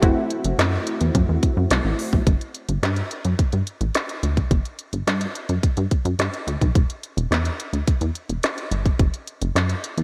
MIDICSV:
0, 0, Header, 1, 4, 480
1, 0, Start_track
1, 0, Tempo, 560748
1, 21, Time_signature, 4, 2, 24, 8
1, 8589, End_track
2, 0, Start_track
2, 0, Title_t, "Analog polysynth"
2, 0, Program_c, 0, 90
2, 0, Note_on_c, 0, 67, 64
2, 14, Note_on_c, 0, 57, 75
2, 18, Note_on_c, 0, 60, 69
2, 24, Note_on_c, 0, 64, 70
2, 29, Note_on_c, 0, 66, 79
2, 129, Note_off_c, 0, 67, 0
2, 1903, Note_off_c, 0, 57, 0
2, 1905, Note_off_c, 0, 60, 0
2, 1908, Note_off_c, 0, 64, 0
2, 1911, Note_off_c, 0, 66, 0
2, 8589, End_track
3, 0, Start_track
3, 0, Title_t, "Analog synth bass"
3, 0, Program_c, 1, 38
3, 23, Note_on_c, 1, 30, 114
3, 104, Note_off_c, 1, 30, 0
3, 383, Note_on_c, 1, 30, 106
3, 464, Note_off_c, 1, 30, 0
3, 501, Note_on_c, 1, 42, 105
3, 665, Note_off_c, 1, 42, 0
3, 864, Note_on_c, 1, 40, 95
3, 945, Note_off_c, 1, 40, 0
3, 984, Note_on_c, 1, 42, 104
3, 1065, Note_off_c, 1, 42, 0
3, 1104, Note_on_c, 1, 40, 91
3, 1185, Note_off_c, 1, 40, 0
3, 1344, Note_on_c, 1, 42, 100
3, 1425, Note_off_c, 1, 42, 0
3, 1462, Note_on_c, 1, 36, 96
3, 1544, Note_off_c, 1, 36, 0
3, 1582, Note_on_c, 1, 33, 89
3, 1664, Note_off_c, 1, 33, 0
3, 1822, Note_on_c, 1, 35, 91
3, 1904, Note_off_c, 1, 35, 0
3, 1941, Note_on_c, 1, 31, 104
3, 2023, Note_off_c, 1, 31, 0
3, 2301, Note_on_c, 1, 31, 83
3, 2383, Note_off_c, 1, 31, 0
3, 2421, Note_on_c, 1, 43, 110
3, 2586, Note_off_c, 1, 43, 0
3, 2781, Note_on_c, 1, 42, 89
3, 2863, Note_off_c, 1, 42, 0
3, 3021, Note_on_c, 1, 43, 82
3, 3103, Note_off_c, 1, 43, 0
3, 3260, Note_on_c, 1, 33, 95
3, 3343, Note_off_c, 1, 33, 0
3, 3621, Note_on_c, 1, 38, 81
3, 3785, Note_off_c, 1, 38, 0
3, 3860, Note_on_c, 1, 31, 102
3, 3943, Note_off_c, 1, 31, 0
3, 4219, Note_on_c, 1, 31, 88
3, 4302, Note_off_c, 1, 31, 0
3, 4342, Note_on_c, 1, 43, 97
3, 4506, Note_off_c, 1, 43, 0
3, 4701, Note_on_c, 1, 42, 86
3, 4783, Note_off_c, 1, 42, 0
3, 4822, Note_on_c, 1, 43, 46
3, 4870, Note_off_c, 1, 43, 0
3, 4941, Note_on_c, 1, 43, 92
3, 5023, Note_off_c, 1, 43, 0
3, 5180, Note_on_c, 1, 42, 96
3, 5263, Note_off_c, 1, 42, 0
3, 5299, Note_on_c, 1, 43, 92
3, 5382, Note_off_c, 1, 43, 0
3, 5541, Note_on_c, 1, 38, 89
3, 5623, Note_off_c, 1, 38, 0
3, 5663, Note_on_c, 1, 35, 96
3, 5744, Note_off_c, 1, 35, 0
3, 5782, Note_on_c, 1, 28, 105
3, 5864, Note_off_c, 1, 28, 0
3, 6139, Note_on_c, 1, 28, 95
3, 6222, Note_off_c, 1, 28, 0
3, 6257, Note_on_c, 1, 40, 104
3, 6423, Note_off_c, 1, 40, 0
3, 6616, Note_on_c, 1, 38, 79
3, 6700, Note_off_c, 1, 38, 0
3, 6742, Note_on_c, 1, 40, 47
3, 6789, Note_off_c, 1, 40, 0
3, 6858, Note_on_c, 1, 40, 91
3, 6941, Note_off_c, 1, 40, 0
3, 7101, Note_on_c, 1, 28, 78
3, 7183, Note_off_c, 1, 28, 0
3, 7459, Note_on_c, 1, 31, 88
3, 7624, Note_off_c, 1, 31, 0
3, 7700, Note_on_c, 1, 30, 104
3, 7783, Note_off_c, 1, 30, 0
3, 8060, Note_on_c, 1, 30, 97
3, 8142, Note_off_c, 1, 30, 0
3, 8179, Note_on_c, 1, 42, 99
3, 8344, Note_off_c, 1, 42, 0
3, 8539, Note_on_c, 1, 40, 86
3, 8589, Note_off_c, 1, 40, 0
3, 8589, End_track
4, 0, Start_track
4, 0, Title_t, "Drums"
4, 22, Note_on_c, 9, 36, 126
4, 22, Note_on_c, 9, 42, 82
4, 107, Note_off_c, 9, 36, 0
4, 108, Note_off_c, 9, 42, 0
4, 261, Note_on_c, 9, 42, 65
4, 346, Note_off_c, 9, 42, 0
4, 381, Note_on_c, 9, 42, 62
4, 466, Note_off_c, 9, 42, 0
4, 506, Note_on_c, 9, 38, 127
4, 506, Note_on_c, 9, 42, 84
4, 513, Note_on_c, 9, 39, 101
4, 591, Note_off_c, 9, 42, 0
4, 592, Note_off_c, 9, 38, 0
4, 599, Note_off_c, 9, 39, 0
4, 743, Note_on_c, 9, 42, 80
4, 829, Note_off_c, 9, 42, 0
4, 862, Note_on_c, 9, 42, 50
4, 947, Note_off_c, 9, 42, 0
4, 983, Note_on_c, 9, 36, 104
4, 983, Note_on_c, 9, 42, 100
4, 1068, Note_off_c, 9, 36, 0
4, 1069, Note_off_c, 9, 42, 0
4, 1223, Note_on_c, 9, 36, 88
4, 1223, Note_on_c, 9, 42, 78
4, 1308, Note_off_c, 9, 42, 0
4, 1309, Note_off_c, 9, 36, 0
4, 1460, Note_on_c, 9, 42, 96
4, 1466, Note_on_c, 9, 38, 118
4, 1473, Note_on_c, 9, 39, 92
4, 1546, Note_off_c, 9, 42, 0
4, 1551, Note_off_c, 9, 38, 0
4, 1558, Note_off_c, 9, 39, 0
4, 1703, Note_on_c, 9, 46, 64
4, 1789, Note_off_c, 9, 46, 0
4, 1822, Note_on_c, 9, 36, 92
4, 1908, Note_off_c, 9, 36, 0
4, 1941, Note_on_c, 9, 36, 113
4, 1941, Note_on_c, 9, 42, 76
4, 2026, Note_off_c, 9, 36, 0
4, 2026, Note_off_c, 9, 42, 0
4, 2065, Note_on_c, 9, 42, 49
4, 2151, Note_off_c, 9, 42, 0
4, 2179, Note_on_c, 9, 42, 56
4, 2264, Note_off_c, 9, 42, 0
4, 2300, Note_on_c, 9, 42, 58
4, 2385, Note_off_c, 9, 42, 0
4, 2424, Note_on_c, 9, 42, 78
4, 2425, Note_on_c, 9, 38, 114
4, 2432, Note_on_c, 9, 39, 91
4, 2510, Note_off_c, 9, 38, 0
4, 2510, Note_off_c, 9, 42, 0
4, 2517, Note_off_c, 9, 39, 0
4, 2537, Note_on_c, 9, 42, 56
4, 2623, Note_off_c, 9, 42, 0
4, 2662, Note_on_c, 9, 42, 71
4, 2748, Note_off_c, 9, 42, 0
4, 2779, Note_on_c, 9, 42, 47
4, 2864, Note_off_c, 9, 42, 0
4, 2902, Note_on_c, 9, 36, 95
4, 2902, Note_on_c, 9, 42, 88
4, 2987, Note_off_c, 9, 36, 0
4, 2987, Note_off_c, 9, 42, 0
4, 3017, Note_on_c, 9, 42, 41
4, 3102, Note_off_c, 9, 42, 0
4, 3141, Note_on_c, 9, 42, 69
4, 3227, Note_off_c, 9, 42, 0
4, 3260, Note_on_c, 9, 42, 49
4, 3346, Note_off_c, 9, 42, 0
4, 3378, Note_on_c, 9, 42, 89
4, 3384, Note_on_c, 9, 38, 114
4, 3391, Note_on_c, 9, 39, 92
4, 3463, Note_off_c, 9, 42, 0
4, 3469, Note_off_c, 9, 38, 0
4, 3476, Note_off_c, 9, 39, 0
4, 3503, Note_on_c, 9, 42, 45
4, 3589, Note_off_c, 9, 42, 0
4, 3623, Note_on_c, 9, 42, 58
4, 3709, Note_off_c, 9, 42, 0
4, 3742, Note_on_c, 9, 36, 84
4, 3743, Note_on_c, 9, 42, 46
4, 3827, Note_off_c, 9, 36, 0
4, 3828, Note_off_c, 9, 42, 0
4, 3860, Note_on_c, 9, 36, 105
4, 3861, Note_on_c, 9, 42, 73
4, 3946, Note_off_c, 9, 36, 0
4, 3946, Note_off_c, 9, 42, 0
4, 3984, Note_on_c, 9, 42, 49
4, 4070, Note_off_c, 9, 42, 0
4, 4098, Note_on_c, 9, 42, 58
4, 4184, Note_off_c, 9, 42, 0
4, 4219, Note_on_c, 9, 42, 55
4, 4305, Note_off_c, 9, 42, 0
4, 4344, Note_on_c, 9, 42, 76
4, 4345, Note_on_c, 9, 38, 109
4, 4352, Note_on_c, 9, 39, 89
4, 4430, Note_off_c, 9, 42, 0
4, 4431, Note_off_c, 9, 38, 0
4, 4438, Note_off_c, 9, 39, 0
4, 4459, Note_on_c, 9, 42, 57
4, 4545, Note_off_c, 9, 42, 0
4, 4583, Note_on_c, 9, 42, 70
4, 4669, Note_off_c, 9, 42, 0
4, 4700, Note_on_c, 9, 42, 46
4, 4786, Note_off_c, 9, 42, 0
4, 4822, Note_on_c, 9, 36, 91
4, 4823, Note_on_c, 9, 42, 85
4, 4907, Note_off_c, 9, 36, 0
4, 4908, Note_off_c, 9, 42, 0
4, 4938, Note_on_c, 9, 42, 43
4, 5024, Note_off_c, 9, 42, 0
4, 5061, Note_on_c, 9, 42, 69
4, 5062, Note_on_c, 9, 36, 79
4, 5147, Note_off_c, 9, 42, 0
4, 5148, Note_off_c, 9, 36, 0
4, 5181, Note_on_c, 9, 42, 48
4, 5267, Note_off_c, 9, 42, 0
4, 5299, Note_on_c, 9, 42, 83
4, 5305, Note_on_c, 9, 38, 109
4, 5312, Note_on_c, 9, 39, 88
4, 5385, Note_off_c, 9, 42, 0
4, 5391, Note_off_c, 9, 38, 0
4, 5398, Note_off_c, 9, 39, 0
4, 5424, Note_on_c, 9, 42, 46
4, 5509, Note_off_c, 9, 42, 0
4, 5544, Note_on_c, 9, 42, 57
4, 5630, Note_off_c, 9, 42, 0
4, 5662, Note_on_c, 9, 36, 84
4, 5664, Note_on_c, 9, 42, 46
4, 5748, Note_off_c, 9, 36, 0
4, 5750, Note_off_c, 9, 42, 0
4, 5781, Note_on_c, 9, 36, 116
4, 5782, Note_on_c, 9, 42, 75
4, 5867, Note_off_c, 9, 36, 0
4, 5868, Note_off_c, 9, 42, 0
4, 5905, Note_on_c, 9, 42, 55
4, 5991, Note_off_c, 9, 42, 0
4, 6021, Note_on_c, 9, 42, 59
4, 6107, Note_off_c, 9, 42, 0
4, 6143, Note_on_c, 9, 42, 58
4, 6229, Note_off_c, 9, 42, 0
4, 6266, Note_on_c, 9, 38, 115
4, 6266, Note_on_c, 9, 42, 73
4, 6273, Note_on_c, 9, 39, 94
4, 6351, Note_off_c, 9, 42, 0
4, 6352, Note_off_c, 9, 38, 0
4, 6359, Note_off_c, 9, 39, 0
4, 6380, Note_on_c, 9, 42, 56
4, 6465, Note_off_c, 9, 42, 0
4, 6504, Note_on_c, 9, 42, 70
4, 6589, Note_off_c, 9, 42, 0
4, 6621, Note_on_c, 9, 42, 47
4, 6706, Note_off_c, 9, 42, 0
4, 6741, Note_on_c, 9, 42, 90
4, 6742, Note_on_c, 9, 36, 100
4, 6827, Note_off_c, 9, 36, 0
4, 6827, Note_off_c, 9, 42, 0
4, 6857, Note_on_c, 9, 42, 44
4, 6943, Note_off_c, 9, 42, 0
4, 6980, Note_on_c, 9, 42, 70
4, 7065, Note_off_c, 9, 42, 0
4, 7100, Note_on_c, 9, 42, 48
4, 7186, Note_off_c, 9, 42, 0
4, 7218, Note_on_c, 9, 42, 84
4, 7224, Note_on_c, 9, 38, 110
4, 7231, Note_on_c, 9, 39, 85
4, 7304, Note_off_c, 9, 42, 0
4, 7310, Note_off_c, 9, 38, 0
4, 7317, Note_off_c, 9, 39, 0
4, 7343, Note_on_c, 9, 42, 47
4, 7429, Note_off_c, 9, 42, 0
4, 7460, Note_on_c, 9, 42, 58
4, 7546, Note_off_c, 9, 42, 0
4, 7581, Note_on_c, 9, 36, 88
4, 7582, Note_on_c, 9, 42, 45
4, 7666, Note_off_c, 9, 36, 0
4, 7667, Note_off_c, 9, 42, 0
4, 7699, Note_on_c, 9, 36, 109
4, 7699, Note_on_c, 9, 42, 73
4, 7785, Note_off_c, 9, 36, 0
4, 7785, Note_off_c, 9, 42, 0
4, 7821, Note_on_c, 9, 42, 53
4, 7907, Note_off_c, 9, 42, 0
4, 7939, Note_on_c, 9, 42, 61
4, 8025, Note_off_c, 9, 42, 0
4, 8060, Note_on_c, 9, 42, 57
4, 8145, Note_off_c, 9, 42, 0
4, 8185, Note_on_c, 9, 38, 119
4, 8185, Note_on_c, 9, 42, 75
4, 8192, Note_on_c, 9, 39, 93
4, 8270, Note_off_c, 9, 42, 0
4, 8271, Note_off_c, 9, 38, 0
4, 8278, Note_off_c, 9, 39, 0
4, 8298, Note_on_c, 9, 42, 54
4, 8384, Note_off_c, 9, 42, 0
4, 8422, Note_on_c, 9, 42, 69
4, 8508, Note_off_c, 9, 42, 0
4, 8539, Note_on_c, 9, 42, 48
4, 8589, Note_off_c, 9, 42, 0
4, 8589, End_track
0, 0, End_of_file